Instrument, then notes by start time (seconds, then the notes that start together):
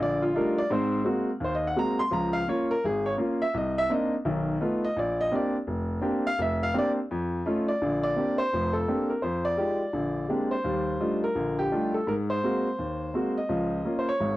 grand piano
Already playing: A#1 D3
0.03 D5
0.22 F4
0.35 G3 A3 D4 D#4 F4 A#4
0.58 D5
0.70 G#2 C4 C5
1.04 G#3 A#3 C4 F#4
1.40 D#2
1.44 C5
1.55 D#5
1.67 F#5
1.76 G#3 A#3 C4 F#4 A#5
1.99 C6
2.11 C#2 F3 A#5
2.33 F5
2.48 A#3 C#4 F4 C#5
2.71 A#4
2.84 G#1 G#4
3.06 C#5
3.18 A#3 C#4 F4
3.42 E5
3.54 C2 D#5
3.78 E5
3.90 A#3 C4 D4 D#4
3.94 D#5
4.25 B1 D#3
4.61 A3 B3 D#4 F4
4.85 D#5
4.97 A#1 D5
5.21 D#5
5.31 A#3 C4 D4 G4 D5
5.67 F1
6.01 A#3 C4 D4 G4
6.27 F5
6.39 F1 E5
6.63 F5
6.74 A#3 C4 D4 G4
6.79 D5
7.11 F2
7.46 A3 C#4 D#4 F4
7.68 D5
7.82 A#1 D3
8.03 D5
8.16 A#3 C4 D4 G4
8.38 C5
8.53 F1 F2
8.73 A4
8.88 A#3 C4 D4 G4
9.10 A#4
9.22 F2 C5
9.45 D5
9.57 G#3 D#4 F4 G4
9.93 A#1 D3
10.29 G#3 A#3 C4 D4 G4
10.51 C5
10.64 D#2 G3
11.00 G3 A3 D4 D#4 F4
11.24 A#4
11.35 A#1 D3
11.59 G4
11.72 G3 A3 D4 D#4 F4
11.94 A4
12.07 G#2 A#4
12.30 C5
12.44 G#3 A#3 C4 F#4
12.79 D#2
13.14 G#3 A#3 C4 F#4
13.38 D#5
13.49 C#2 F3
13.85 A#3 C#4 F4
13.99 C5
14.09 C#5
14.20 G#1 G#2